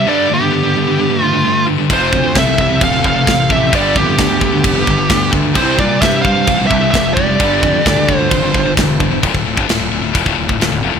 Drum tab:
CC |----------------|x---x---x---x---|x---x---x---x---|x---x---x---x---|
SD |----------------|----o-------o---|----o-------o---|----o-------o---|
BD |----------------|o-o-o-o-o-o-o-o-|o-o-o-o-o-o-o-o-|o-o-o-o-o-o-o-o-|

CC |x---x---x---x---|x---x---x---x---|
SD |----o-------o---|----o-------o---|
BD |o-o-o-o-o-o-o-o-|oo-o----oo-o----|